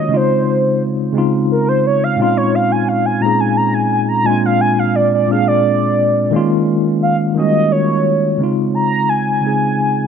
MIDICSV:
0, 0, Header, 1, 3, 480
1, 0, Start_track
1, 0, Key_signature, -5, "major"
1, 0, Tempo, 689655
1, 83, Time_signature, 6, 3, 24, 8
1, 7009, End_track
2, 0, Start_track
2, 0, Title_t, "Soft synth lead"
2, 0, Program_c, 0, 80
2, 0, Note_on_c, 0, 75, 96
2, 115, Note_on_c, 0, 72, 99
2, 125, Note_off_c, 0, 75, 0
2, 579, Note_off_c, 0, 72, 0
2, 1055, Note_on_c, 0, 70, 84
2, 1173, Note_on_c, 0, 72, 80
2, 1183, Note_off_c, 0, 70, 0
2, 1288, Note_off_c, 0, 72, 0
2, 1298, Note_on_c, 0, 73, 89
2, 1418, Note_on_c, 0, 77, 87
2, 1428, Note_off_c, 0, 73, 0
2, 1531, Note_off_c, 0, 77, 0
2, 1544, Note_on_c, 0, 77, 101
2, 1651, Note_on_c, 0, 73, 93
2, 1661, Note_off_c, 0, 77, 0
2, 1775, Note_on_c, 0, 77, 87
2, 1785, Note_off_c, 0, 73, 0
2, 1892, Note_on_c, 0, 80, 90
2, 1902, Note_off_c, 0, 77, 0
2, 2007, Note_on_c, 0, 77, 93
2, 2017, Note_off_c, 0, 80, 0
2, 2127, Note_on_c, 0, 80, 104
2, 2138, Note_off_c, 0, 77, 0
2, 2238, Note_on_c, 0, 82, 108
2, 2249, Note_off_c, 0, 80, 0
2, 2368, Note_on_c, 0, 80, 101
2, 2378, Note_off_c, 0, 82, 0
2, 2485, Note_on_c, 0, 82, 107
2, 2495, Note_off_c, 0, 80, 0
2, 2603, Note_on_c, 0, 80, 98
2, 2613, Note_off_c, 0, 82, 0
2, 2723, Note_off_c, 0, 80, 0
2, 2733, Note_on_c, 0, 80, 98
2, 2785, Note_off_c, 0, 80, 0
2, 2842, Note_on_c, 0, 82, 101
2, 2963, Note_on_c, 0, 80, 113
2, 2974, Note_off_c, 0, 82, 0
2, 3083, Note_off_c, 0, 80, 0
2, 3101, Note_on_c, 0, 77, 98
2, 3207, Note_on_c, 0, 80, 92
2, 3218, Note_off_c, 0, 77, 0
2, 3335, Note_on_c, 0, 77, 91
2, 3345, Note_off_c, 0, 80, 0
2, 3449, Note_on_c, 0, 74, 91
2, 3459, Note_off_c, 0, 77, 0
2, 3566, Note_off_c, 0, 74, 0
2, 3580, Note_on_c, 0, 74, 82
2, 3684, Note_off_c, 0, 74, 0
2, 3696, Note_on_c, 0, 77, 96
2, 3812, Note_on_c, 0, 74, 91
2, 3822, Note_off_c, 0, 77, 0
2, 4527, Note_off_c, 0, 74, 0
2, 4888, Note_on_c, 0, 77, 101
2, 4986, Note_off_c, 0, 77, 0
2, 5131, Note_on_c, 0, 75, 101
2, 5372, Note_on_c, 0, 73, 87
2, 5382, Note_off_c, 0, 75, 0
2, 5848, Note_off_c, 0, 73, 0
2, 6085, Note_on_c, 0, 82, 97
2, 6327, Note_on_c, 0, 80, 101
2, 6338, Note_off_c, 0, 82, 0
2, 7009, Note_off_c, 0, 80, 0
2, 7009, End_track
3, 0, Start_track
3, 0, Title_t, "Tine electric piano"
3, 0, Program_c, 1, 4
3, 0, Control_c, 1, 64, 127
3, 0, Note_on_c, 1, 51, 62
3, 0, Note_on_c, 1, 56, 59
3, 0, Note_on_c, 1, 58, 56
3, 0, Note_on_c, 1, 61, 58
3, 0, Note_on_c, 1, 65, 83
3, 0, Note_on_c, 1, 66, 71
3, 60, Note_on_c, 1, 49, 74
3, 67, Note_off_c, 1, 56, 0
3, 67, Note_on_c, 1, 56, 67
3, 78, Note_on_c, 1, 60, 67
3, 88, Note_on_c, 1, 63, 66
3, 92, Note_off_c, 1, 58, 0
3, 92, Control_c, 1, 64, 0
3, 95, Note_off_c, 1, 66, 0
3, 97, Note_off_c, 1, 51, 0
3, 97, Note_off_c, 1, 61, 0
3, 97, Note_off_c, 1, 65, 0
3, 97, Note_on_c, 1, 65, 81
3, 207, Control_c, 1, 64, 127
3, 716, Note_off_c, 1, 49, 0
3, 720, Note_off_c, 1, 56, 0
3, 725, Note_off_c, 1, 60, 0
3, 730, Note_off_c, 1, 63, 0
3, 735, Note_off_c, 1, 65, 0
3, 782, Note_on_c, 1, 49, 77
3, 793, Note_on_c, 1, 56, 69
3, 802, Note_on_c, 1, 60, 71
3, 811, Note_on_c, 1, 63, 70
3, 821, Note_on_c, 1, 65, 84
3, 1437, Note_off_c, 1, 49, 0
3, 1443, Note_off_c, 1, 56, 0
3, 1447, Note_off_c, 1, 60, 0
3, 1452, Note_off_c, 1, 63, 0
3, 1457, Note_off_c, 1, 65, 0
3, 1508, Note_on_c, 1, 46, 74
3, 1517, Note_on_c, 1, 56, 69
3, 1524, Note_on_c, 1, 60, 68
3, 1532, Note_on_c, 1, 61, 73
3, 1533, Control_c, 1, 64, 0
3, 1541, Note_on_c, 1, 63, 71
3, 1546, Note_on_c, 1, 65, 87
3, 1657, Control_c, 1, 64, 127
3, 2160, Note_off_c, 1, 46, 0
3, 2165, Note_off_c, 1, 56, 0
3, 2168, Note_off_c, 1, 60, 0
3, 2172, Note_off_c, 1, 61, 0
3, 2177, Note_off_c, 1, 63, 0
3, 2179, Note_off_c, 1, 65, 0
3, 2232, Note_on_c, 1, 46, 70
3, 2241, Note_on_c, 1, 56, 62
3, 2251, Note_on_c, 1, 60, 60
3, 2255, Note_on_c, 1, 61, 62
3, 2265, Note_on_c, 1, 63, 58
3, 2271, Note_on_c, 1, 68, 73
3, 2882, Note_off_c, 1, 46, 0
3, 2887, Note_off_c, 1, 56, 0
3, 2891, Note_off_c, 1, 60, 0
3, 2894, Note_off_c, 1, 61, 0
3, 2899, Note_off_c, 1, 63, 0
3, 2902, Note_off_c, 1, 68, 0
3, 2954, Note_on_c, 1, 46, 80
3, 2966, Note_on_c, 1, 56, 76
3, 2972, Control_c, 1, 64, 0
3, 2974, Note_on_c, 1, 60, 72
3, 2984, Note_on_c, 1, 62, 69
3, 2992, Note_on_c, 1, 65, 81
3, 3097, Control_c, 1, 64, 127
3, 3603, Note_off_c, 1, 46, 0
3, 3609, Note_off_c, 1, 56, 0
3, 3613, Note_off_c, 1, 60, 0
3, 3618, Note_off_c, 1, 62, 0
3, 3622, Note_off_c, 1, 65, 0
3, 3671, Note_on_c, 1, 46, 68
3, 3679, Note_on_c, 1, 56, 64
3, 3689, Note_on_c, 1, 60, 62
3, 3696, Note_on_c, 1, 62, 64
3, 3708, Note_on_c, 1, 68, 74
3, 4322, Note_off_c, 1, 46, 0
3, 4326, Note_off_c, 1, 56, 0
3, 4331, Note_off_c, 1, 60, 0
3, 4334, Note_off_c, 1, 62, 0
3, 4340, Note_off_c, 1, 68, 0
3, 4391, Note_on_c, 1, 51, 100
3, 4404, Note_on_c, 1, 56, 87
3, 4408, Note_on_c, 1, 58, 86
3, 4412, Control_c, 1, 64, 0
3, 4420, Note_on_c, 1, 61, 91
3, 4427, Note_on_c, 1, 65, 102
3, 4546, Control_c, 1, 64, 127
3, 5042, Note_off_c, 1, 51, 0
3, 5048, Note_off_c, 1, 56, 0
3, 5050, Note_off_c, 1, 58, 0
3, 5056, Note_off_c, 1, 61, 0
3, 5060, Note_off_c, 1, 65, 0
3, 5114, Note_on_c, 1, 51, 72
3, 5122, Note_on_c, 1, 55, 50
3, 5131, Note_on_c, 1, 58, 66
3, 5142, Note_on_c, 1, 61, 60
3, 5149, Note_on_c, 1, 66, 76
3, 5167, Note_on_c, 1, 56, 65
3, 5168, Note_off_c, 1, 55, 0
3, 5763, Note_off_c, 1, 51, 0
3, 5772, Note_off_c, 1, 58, 0
3, 5777, Note_off_c, 1, 61, 0
3, 5781, Note_off_c, 1, 66, 0
3, 5789, Note_off_c, 1, 56, 0
3, 5831, Note_on_c, 1, 49, 65
3, 5840, Note_on_c, 1, 56, 65
3, 5851, Control_c, 1, 64, 0
3, 5851, Note_on_c, 1, 60, 63
3, 5859, Note_on_c, 1, 63, 63
3, 5870, Note_on_c, 1, 65, 77
3, 5985, Control_c, 1, 64, 127
3, 6482, Note_off_c, 1, 49, 0
3, 6486, Note_off_c, 1, 56, 0
3, 6492, Note_off_c, 1, 60, 0
3, 6496, Note_off_c, 1, 63, 0
3, 6501, Note_off_c, 1, 65, 0
3, 6549, Note_on_c, 1, 49, 60
3, 6563, Note_on_c, 1, 56, 53
3, 6572, Note_on_c, 1, 60, 54
3, 6578, Note_on_c, 1, 63, 56
3, 6591, Note_on_c, 1, 68, 69
3, 7009, Note_off_c, 1, 49, 0
3, 7009, Note_off_c, 1, 56, 0
3, 7009, Note_off_c, 1, 60, 0
3, 7009, Note_off_c, 1, 63, 0
3, 7009, Note_off_c, 1, 68, 0
3, 7009, End_track
0, 0, End_of_file